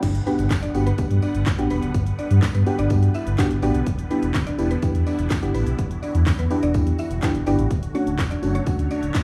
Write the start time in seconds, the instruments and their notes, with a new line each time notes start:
0.03 sub bass G1, supersaw synth D3 G3 B3 B4 F#5, kick, closed hi-hat, crash, tambourine, impact, shaker
0.15 closed hi-hat, shaker
0.26 synth stab B3 D4 F#4 G4, synth pluck B3 B4, open hi-hat, shaker
0.39 sub bass G1, closed hi-hat, shaker
0.50 sub bass F#1, kick, snare, clap, closed hi-hat, tambourine, shaker
0.62 synth pluck D4 D5, closed hi-hat, shaker
0.74 sub bass G1, synth stab B3 D4 F#4 G4, open hi-hat, tambourine, shaker
0.86 synth pluck B3 B4, closed hi-hat, shaker
0.98 sub bass G2, synth stab B3 D4 F#4 G4, kick, closed hi-hat, tambourine, shaker
1.10 sub bass G2, closed hi-hat, shaker
1.22 synth pluck D4 D5, open hi-hat, tambourine, shaker
1.35 sub bass G1, closed hi-hat, shaker
1.46 kick, snare, clap, closed hi-hat, tambourine, shaker
1.58 sub bass A1, synth stab B3 D4 F#4 G4, closed hi-hat, shaker
1.70 sub bass E1, synth pluck B3 B4, open hi-hat, tambourine, shaker
1.82 sub bass D1, closed hi-hat, shaker
1.94 sub bass G1, kick, closed hi-hat, tambourine, shaker
2.07 closed hi-hat, shaker
2.19 synth pluck D4 D5, open hi-hat, shaker
2.31 sub bass G2, closed hi-hat, shaker
2.42 sub bass G2, kick, snare, clap, closed hi-hat, tambourine, shaker
2.55 sub bass G2, synth pluck B3 B4, closed hi-hat, shaker
2.66 synth stab B3 D4 F#4 G4, open hi-hat, tambourine, shaker
2.79 sub bass G1, synth pluck D4 D5, closed hi-hat, shaker
2.90 sub bass G2, synth stab B3 D4 F#4 G4, kick, closed hi-hat, tambourine, shaker
3.03 closed hi-hat, shaker
3.14 synth pluck E4 E5, open hi-hat, tambourine, shaker
3.27 sub bass G1, closed hi-hat, shaker
3.38 synth stab B3 D4 F#4 G4, kick, snare, clap, closed hi-hat, tambourine, shaker
3.51 sub bass G1, closed hi-hat, shaker
3.62 sub bass A1, synth stab B3 D4 F#4 G4, synth pluck D4 D5, open hi-hat, tambourine, shaker
3.75 sub bass B1, closed hi-hat, shaker
3.86 sub bass E1, supersaw synth E4, kick, closed hi-hat, shaker
3.99 closed hi-hat, shaker
4.10 synth stab B3 D4 E4 G4, synth pluck B3 B4, open hi-hat, shaker
4.23 sub bass E1, closed hi-hat, shaker
4.34 sub bass D1, kick, snare, clap, closed hi-hat, tambourine, shaker
4.47 synth pluck D4 D5, closed hi-hat, shaker
4.58 sub bass E1, synth stab B3 D4 E4 G4, open hi-hat, tambourine, shaker
4.71 synth pluck B3 B4, closed hi-hat, shaker
4.82 sub bass E2, synth stab B3 D4 E4 G4, kick, closed hi-hat, tambourine, shaker
4.95 sub bass E2, closed hi-hat, shaker
5.06 synth pluck D4 D5, open hi-hat, tambourine, shaker
5.19 sub bass E1, closed hi-hat, shaker
5.30 kick, snare, clap, closed hi-hat, tambourine, shaker
5.42 sub bass G1, synth stab B3 D4 E4 G4, closed hi-hat, shaker
5.54 sub bass A1, synth pluck B3 B4, open hi-hat, tambourine, shaker
5.67 sub bass B1, closed hi-hat, shaker
5.79 sub bass E1, supersaw synth F#4, kick, closed hi-hat, shaker
5.91 closed hi-hat, shaker
6.03 synth pluck D4 D5, open hi-hat, tambourine, shaker
6.15 sub bass E2, closed hi-hat, shaker
6.27 sub bass E2, kick, snare, clap, closed hi-hat, tambourine, shaker
6.39 sub bass E2, synth pluck B3 B4, closed hi-hat, shaker
6.50 synth stab B3 D4 E4 G4, open hi-hat, tambourine, shaker
6.63 sub bass E1, synth pluck D4 D5, closed hi-hat, shaker
6.74 sub bass E2, synth stab B3 D4 E4 G4, kick, closed hi-hat, tambourine, shaker
6.87 closed hi-hat, shaker
6.98 synth pluck E4 E5, open hi-hat, tambourine, shaker
7.11 sub bass E1, closed hi-hat, shaker
7.22 synth stab B3 D4 E4 G4, kick, snare, clap, closed hi-hat, tambourine, shaker
7.35 sub bass E1, closed hi-hat, shaker
7.46 sub bass G1, synth stab B3 D4 E4 G4, synth pluck D4 D5, open hi-hat, tambourine, shaker
7.59 sub bass A1, closed hi-hat, shaker
7.71 sub bass D1, supersaw synth D3 F#3 A3 C#5, kick, closed hi-hat, tambourine, shaker
7.83 closed hi-hat, shaker
7.94 synth stab A3 C#4 D4 F#4, synth pluck C#4 C#5, open hi-hat, shaker
8.07 sub bass D1, closed hi-hat, shaker
8.19 sub bass E1, kick, snare, clap, closed hi-hat, tambourine, shaker
8.31 synth pluck D4 D5, closed hi-hat, shaker
8.42 sub bass F#1, synth stab A3 C#4 D4 F#4, open hi-hat, tambourine, shaker
8.55 synth pluck C#4 C#5, closed hi-hat, shaker
8.66 sub bass D2, synth stab A3 C#4 D4 F#4, kick, closed hi-hat, tambourine, shaker
8.79 sub bass D2, closed hi-hat, shaker
8.90 synth pluck D4 D5, open hi-hat, tambourine, shaker
9.03 sub bass D1, closed hi-hat, shaker
9.14 kick, snare, clap, closed hi-hat, tambourine, shaker